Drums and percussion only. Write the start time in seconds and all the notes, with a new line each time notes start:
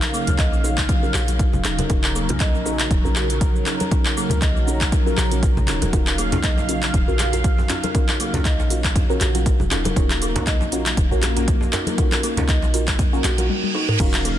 0.02 clap, closed hi-hat, muted conga, cabasa
0.14 cabasa
0.27 closed hi-hat, muted conga, low conga, cabasa
0.38 kick, clap, closed hi-hat, cabasa
0.53 muted conga, cabasa
0.64 cabasa
0.78 kick, clap, closed hi-hat, muted conga, cabasa
0.89 kick, closed hi-hat, cabasa
1.04 cabasa
1.14 clap, muted conga, cabasa
1.28 closed hi-hat, high conga, cabasa
1.39 kick, closed hi-hat, muted conga, cabasa
1.53 high conga, low conga, cabasa
1.64 clap, closed hi-hat, muted conga, cabasa
1.79 closed hi-hat, high conga, low conga, cabasa
1.89 kick, closed hi-hat, high conga, cabasa
2.03 clap, closed hi-hat, muted conga, cabasa
2.16 cabasa
2.29 closed hi-hat, muted conga, low conga, cabasa
2.40 kick, clap, closed hi-hat, cabasa
2.54 muted conga, cabasa
2.66 cabasa
2.79 clap, closed hi-hat, muted conga, cabasa
2.91 kick, closed hi-hat, cabasa
3.05 cabasa
3.16 clap, muted conga, cabasa
3.30 closed hi-hat, cabasa
3.41 kick, closed hi-hat, muted conga, cabasa
3.56 cabasa
3.66 clap, closed hi-hat, muted conga, cabasa
3.80 closed hi-hat, high conga, cabasa
3.91 kick, closed hi-hat, high conga, cabasa
4.05 clap, closed hi-hat, muted conga, cabasa
4.17 cabasa
4.30 closed hi-hat, muted conga, low conga, cabasa
4.42 kick, clap, closed hi-hat, cabasa
4.57 muted conga, cabasa
4.68 cabasa
4.81 kick, clap, closed hi-hat, muted conga, cabasa
4.92 kick, closed hi-hat, cabasa
5.07 cabasa
5.17 clap, muted conga, cabasa
5.32 closed hi-hat, high conga, cabasa
5.43 kick, closed hi-hat, muted conga, cabasa
5.57 high conga, low conga, cabasa
5.68 clap, closed hi-hat, muted conga, cabasa
5.82 closed hi-hat, high conga, low conga, cabasa
5.93 kick, closed hi-hat, high conga, cabasa
6.07 clap, closed hi-hat, muted conga, cabasa
6.18 open hi-hat, cabasa
6.32 closed hi-hat, muted conga, djembe slap, low conga, djembe bass, cabasa
6.44 kick, clap, closed hi-hat, cabasa
6.57 muted conga, djembe slap, djembe tone, cabasa
6.69 open hi-hat, cabasa
6.83 clap, closed hi-hat, muted conga, cabasa
6.94 kick, closed hi-hat, cabasa
7.09 cabasa
7.19 clap, open hi-hat, muted conga, djembe tone, cabasa
7.33 closed hi-hat, djembe tone, cabasa
7.44 kick, closed hi-hat, muted conga, cabasa
7.58 djembe tone, cabasa
7.70 clap, open hi-hat, muted conga, djembe slap, djembe bass, cabasa
7.84 closed hi-hat, high conga, cabasa
7.95 kick, closed hi-hat, high conga, cabasa
8.08 clap, closed hi-hat, muted conga, djembe tone, cabasa
8.20 open hi-hat, cabasa
8.34 closed hi-hat, muted conga, djembe slap, djembe bass, low conga, cabasa
8.45 kick, clap, closed hi-hat, cabasa
8.59 muted conga, djembe slap, djembe tone, cabasa
8.70 open hi-hat, cabasa
8.84 kick, clap, closed hi-hat, muted conga, cabasa
8.96 kick, closed hi-hat, djembe tone, djembe bass, cabasa
9.10 cabasa
9.20 clap, open hi-hat, muted conga, djembe tone, cabasa
9.35 closed hi-hat, high conga, cabasa
9.46 kick, closed hi-hat, cabasa
9.60 high conga, low conga, cabasa
9.71 clap, open hi-hat, muted conga, djembe tone, cabasa
9.85 closed hi-hat, high conga, low conga, cabasa
9.96 kick, closed hi-hat, high conga, cabasa
10.10 clap, closed hi-hat, muted conga, cabasa
10.22 open hi-hat, cabasa
10.35 closed hi-hat, muted conga, djembe slap, djembe bass, low conga, cabasa
10.47 kick, clap, closed hi-hat, cabasa
10.60 djembe slap, muted conga, djembe tone, cabasa
10.72 open hi-hat, cabasa
10.86 clap, closed hi-hat, muted conga, cabasa
10.97 kick, closed hi-hat, cabasa
11.12 cabasa
11.22 clap, open hi-hat, muted conga, djembe tone, cabasa
11.37 closed hi-hat, djembe tone, cabasa
11.48 kick, closed hi-hat, muted conga, cabasa
11.61 djembe tone, cabasa
11.73 clap, open hi-hat, muted conga, djembe slap, djembe bass, cabasa
11.87 closed hi-hat, high conga, cabasa
11.98 kick, closed hi-hat, high conga, cabasa
12.11 clap, closed hi-hat, muted conga, djembe tone, cabasa
12.23 open hi-hat, cabasa
12.37 closed hi-hat, muted conga, djembe slap, djembe bass, low conga, cabasa
12.49 kick, clap, closed hi-hat, cabasa
12.62 djembe slap, muted conga, djembe tone, cabasa
12.74 open hi-hat, cabasa
12.88 kick, clap, closed hi-hat, muted conga, cabasa
12.98 kick, closed hi-hat, djembe tone, djembe bass, cabasa
13.14 cabasa
13.23 clap, open hi-hat, muted conga, djembe tone, cabasa
13.38 closed hi-hat, high conga, cabasa
13.49 high tom
13.63 high tom
13.89 mid tom
14.00 kick, closed hi-hat, crash, cabasa
14.13 clap, closed hi-hat, muted conga, djembe tone, cabasa
14.25 open hi-hat